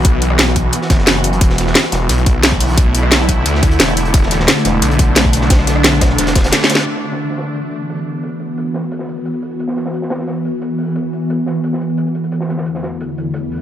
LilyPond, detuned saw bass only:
\new Staff \with { instrumentName = "Detuned saw bass" } { \clef bass \time 4/4 \key d \mixolydian \tempo 4 = 176 b,,2 r8 fis,,4. | e,,8 e,,8 r8 e,,8 b,,2~ | b,,2 d,4 e,,4 | e,,8 e,,8 r8 e,,8 b,,2~ |
b,,2 e,,4 r4 | r1 | r1 | r1 |
r1 | r1 | }